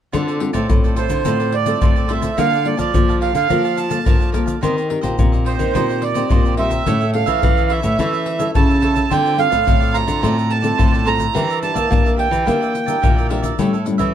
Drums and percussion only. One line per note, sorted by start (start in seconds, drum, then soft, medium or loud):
0.13 pandeiro medium
0.13 shaker medium
0.13 surdo medium
0.28 pandeiro soft
0.28 shaker soft
0.40 pandeiro medium
0.54 pandeiro medium
0.54 shaker medium
0.54 surdo soft
0.70 pandeiro medium
0.70 shaker medium
0.70 surdo loud
0.84 pandeiro soft
0.84 shaker soft
0.84 surdo soft
0.96 pandeiro medium
0.96 shaker medium
1.09 pandeiro medium
1.09 shaker medium
1.09 surdo soft
1.25 pandeiro medium
1.25 shaker medium
1.25 surdo medium
1.40 pandeiro soft
1.40 shaker soft
1.52 pandeiro medium
1.66 pandeiro medium
1.66 shaker medium
1.82 pandeiro medium
1.82 shaker medium
1.82 surdo loud
1.96 pandeiro soft
1.96 shaker soft
2.09 pandeiro medium
2.22 pandeiro medium
2.22 shaker medium
2.22 surdo soft
2.38 pandeiro medium
2.38 shaker medium
2.38 surdo medium
2.53 pandeiro soft
2.53 shaker soft
2.65 pandeiro medium
2.79 pandeiro medium
2.79 shaker medium
2.79 surdo soft
2.94 pandeiro medium
2.94 shaker medium
2.94 surdo medium
3.09 pandeiro soft
3.09 shaker soft
3.09 surdo soft
3.22 pandeiro medium
3.35 pandeiro medium
3.35 shaker medium
3.35 surdo soft
3.50 pandeiro medium
3.50 shaker medium
3.50 surdo medium
3.65 pandeiro soft
3.65 shaker soft
3.78 pandeiro medium
3.78 shaker medium
3.91 pandeiro medium
3.91 shaker medium
4.06 pandeiro medium
4.06 shaker medium
4.06 surdo loud
4.21 pandeiro soft
4.21 shaker soft
4.34 pandeiro medium
4.34 shaker medium
4.34 surdo soft
4.48 pandeiro medium
4.48 shaker medium
4.48 surdo soft
4.63 pandeiro medium
4.63 shaker medium
4.63 surdo medium
4.78 pandeiro soft
4.78 shaker soft
4.90 pandeiro medium
5.03 pandeiro medium
5.03 shaker medium
5.03 surdo soft
5.19 pandeiro medium
5.19 shaker medium
5.19 surdo medium
5.33 pandeiro soft
5.33 shaker soft
5.33 surdo soft
5.46 pandeiro medium
5.60 pandeiro medium
5.60 shaker medium
5.60 surdo soft
5.75 pandeiro medium
5.75 shaker medium
5.75 surdo medium
5.90 pandeiro soft
5.90 shaker soft
6.02 pandeiro medium
6.15 pandeiro medium
6.15 shaker medium
6.30 pandeiro medium
6.30 shaker medium
6.30 surdo loud
6.45 pandeiro soft
6.45 shaker soft
6.57 pandeiro medium
6.71 pandeiro medium
6.71 shaker medium
6.71 surdo soft
6.87 pandeiro medium
6.87 shaker medium
6.87 surdo medium
7.01 pandeiro soft
7.01 shaker soft
7.14 pandeiro medium
7.27 pandeiro medium
7.27 shaker medium
7.27 surdo soft
7.43 pandeiro medium
7.43 shaker medium
7.43 surdo medium
7.57 pandeiro soft
7.57 shaker soft
7.57 surdo soft
7.70 pandeiro medium
7.83 pandeiro medium
7.83 shaker medium
7.83 surdo soft
7.99 pandeiro medium
7.99 shaker medium
7.99 surdo medium
8.13 pandeiro soft
8.13 shaker soft
8.26 pandeiro medium
8.40 pandeiro medium
8.40 shaker medium
8.55 pandeiro medium
8.55 shaker medium
8.55 surdo medium
8.70 pandeiro soft
8.70 shaker soft
8.82 pandeiro medium
8.82 surdo soft
8.96 pandeiro medium
8.96 shaker medium
8.96 surdo soft
9.11 pandeiro medium
9.11 shaker medium
9.11 surdo medium
9.26 pandeiro soft
9.26 shaker soft
9.39 pandeiro medium
9.52 pandeiro medium
9.52 shaker medium
9.52 surdo soft
9.68 pandeiro medium
9.68 shaker medium
9.68 surdo medium
9.82 pandeiro soft
9.82 shaker soft
9.82 surdo soft
9.95 pandeiro medium
9.95 shaker medium
10.08 pandeiro medium
10.08 shaker medium
10.08 surdo soft
10.24 pandeiro medium
10.24 shaker medium
10.24 surdo medium
10.39 pandeiro soft
10.39 shaker soft
10.50 pandeiro medium
10.64 pandeiro medium
10.64 shaker medium
10.79 pandeiro medium
10.79 shaker medium
10.79 surdo medium
10.94 pandeiro soft
10.94 shaker soft
11.07 pandeiro medium
11.07 surdo soft
11.20 pandeiro medium
11.20 shaker medium
11.20 surdo soft
11.36 pandeiro medium
11.36 shaker medium
11.36 surdo medium
11.50 pandeiro soft
11.50 shaker soft
11.63 pandeiro medium
11.63 shaker medium
11.76 pandeiro medium
11.76 shaker medium
11.76 surdo soft
11.92 pandeiro medium
11.92 shaker medium
11.92 surdo medium
12.06 pandeiro soft
12.06 shaker soft
12.06 surdo soft
12.19 pandeiro medium
12.33 pandeiro medium
12.33 shaker medium
12.33 surdo soft
12.48 pandeiro medium
12.48 shaker medium
12.48 surdo medium
12.62 pandeiro soft
12.62 shaker soft
12.75 pandeiro medium
12.75 shaker medium
12.88 pandeiro medium
12.88 shaker medium
13.04 pandeiro medium
13.04 shaker medium
13.04 surdo medium
13.18 pandeiro soft
13.18 shaker soft
13.31 pandeiro medium
13.44 pandeiro medium
13.44 shaker medium
13.44 surdo soft
13.59 pandeiro medium
13.59 shaker medium
13.59 surdo medium
13.74 pandeiro soft
13.74 shaker soft
13.86 pandeiro medium
13.86 shaker medium
13.99 pandeiro medium
13.99 shaker medium
13.99 surdo soft